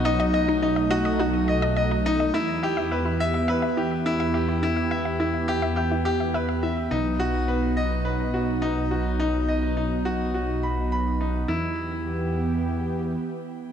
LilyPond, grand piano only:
\new Staff \with { instrumentName = "Grand piano" } { \time 4/4 \key e \minor \tempo 4 = 105 dis'8 dis''8 dis'8 fis'8 fis'8 dis''8 dis''8 dis'8 | e'8 g'8 b'8 e''8 b'8 g'8 e'8 g'8 | e'8 e''8 e'8 g'8 g'8 g'8 b'8 e''8 | dis'8 fis'8 b'8 dis''8 b'8 fis'8 dis'8 fis'8 |
dis'8 dis''8 dis'8 fis'8 fis'8 b''8 b''8 dis'8 | e'8 r2. r8 | }